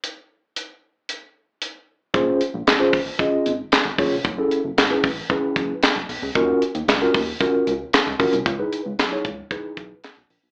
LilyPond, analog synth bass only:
\new Staff \with { instrumentName = "Analog synth bass" } { \clef bass \time 4/4 \key bes \minor \tempo 4 = 114 r1 | bes,,8 r16 bes,,16 aes,,8 bes,,8 r8 aes,,8 r16 aes,,16 ges,,16 f,,16 | ges,,8 r16 ges,,16 aes,,8 a,,8 r8 ges,,8 r16 ges,,16 ces,16 des,16 | ees,8 r16 ees,16 des,8 ees,8 r8 des,8 r16 des,16 bes,,16 c,16 |
des,8 r16 des,16 ces,8 des,8 r8 ces,8 r16 ces,16 bes,,16 ces,16 | }